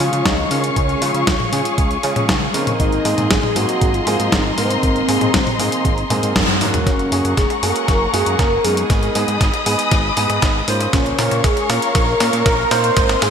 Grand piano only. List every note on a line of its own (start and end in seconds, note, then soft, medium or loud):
0.00 0.32 G#3 medium
0.00 0.32 C#4 medium
0.00 0.32 F4 medium
0.00 0.32 G#4 loud
0.51 0.99 G#3 medium
0.51 0.99 C#4 medium
0.51 0.99 F4 medium
0.51 0.99 A#4 medium
1.02 1.22 G#3 loud
1.02 1.22 C#4 medium
1.02 1.22 F4 medium
1.02 1.22 G#4 loud
1.53 1.85 G#3 medium
1.53 1.85 C#4 medium
1.53 1.85 F4 medium
1.53 1.85 G#4 medium
2.03 2.36 G#3 loud
2.03 2.36 C#4 medium
2.03 2.36 F4 medium
2.03 2.36 G#4 loud
2.54 3.02 A#3 medium
2.54 3.02 C4 medium
2.54 3.02 D#4 medium
2.54 3.02 A#4 medium
3.05 3.25 A#3 medium
3.05 3.25 C4 medium
3.05 3.25 D#4 medium
3.05 3.25 G#4 loud
3.56 3.88 A#3 medium
3.56 3.88 C4 medium
3.56 3.88 D#4 medium
3.56 3.88 G#4 medium
4.07 4.39 A#3 loud
4.07 4.39 C4 medium
4.07 4.39 D#4 medium
4.07 4.39 G#4 loud
4.58 5.06 A#3 medium
4.58 5.06 C4 medium
4.58 5.06 D#4 medium
4.58 5.06 A#4 medium
5.09 5.29 A#3 loud
5.09 5.29 C4 medium
5.09 5.29 D#4 medium
5.09 5.29 G#4 loud
5.59 5.92 A#3 medium
5.59 5.92 C4 medium
5.59 5.92 D#4 medium
5.59 5.92 G#4 medium
6.10 6.42 A#3 loud
6.10 6.42 C4 medium
6.10 6.42 D#4 medium
6.10 6.42 G#4 loud
6.61 7.09 A#3 medium
6.61 7.09 C#4 medium
6.61 7.09 F#4 medium
6.61 7.09 A#4 medium
7.12 7.32 A#3 loud
7.12 7.32 C#4 medium
7.12 7.32 F#4 medium
7.12 7.32 G#4 loud
7.63 7.95 A#3 medium
7.63 7.95 C#4 medium
7.63 7.95 F#4 medium
7.63 7.95 G#4 medium
8.14 8.46 A#3 loud
8.14 8.46 C#4 medium
8.14 8.46 F#4 medium
8.14 8.46 G#4 loud
8.64 9.12 G#3 medium
8.64 9.12 B3 medium
8.64 9.12 D#4 medium
8.64 9.12 A#4 medium
9.15 9.35 G#3 medium
9.15 9.35 B3 medium
9.15 9.35 D#4 medium
9.15 9.35 G#4 loud
9.66 9.98 G#3 medium
9.66 9.98 B3 medium
9.66 9.98 D#4 medium
9.66 9.98 G#4 medium
10.17 10.49 G#3 loud
10.17 10.49 B3 medium
10.17 10.49 D#4 medium
10.17 10.49 G#4 loud
10.68 11.16 A#3 medium
10.68 11.16 C#4 medium
10.68 11.16 F4 medium
10.68 11.16 C5 loud
11.19 11.39 A#3 loud
11.19 11.39 C#4 medium
11.19 11.39 F4 medium
11.19 11.39 A#4 loud
11.69 12.02 A#3 medium
11.69 12.02 C#4 medium
11.69 12.02 F4 medium
11.69 12.02 A#4 medium
12.20 12.53 A#3 loud
12.20 12.52 C#4 medium
12.20 12.52 F4 loud
12.20 12.53 A#4 loud
12.71 13.19 A#3 medium
12.71 13.19 C4 medium
12.71 13.19 D#4 medium
12.71 13.19 A#4 medium
13.22 13.30 A#3 loud
13.22 13.30 C4 medium
13.22 13.30 D#4 medium
13.22 13.30 G#4 loud